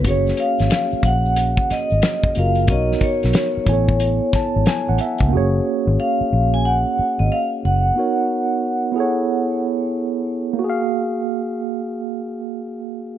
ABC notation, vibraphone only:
X:1
M:4/4
L:1/16
Q:"Swing 16ths" 1/4=91
K:F#
V:1 name="Vibraphone"
c2 e4 f4 d4 e2 | d2 c12 z2 | z4 e3 g f3 d e2 f2- | f8- f2 z6 |
z16 |]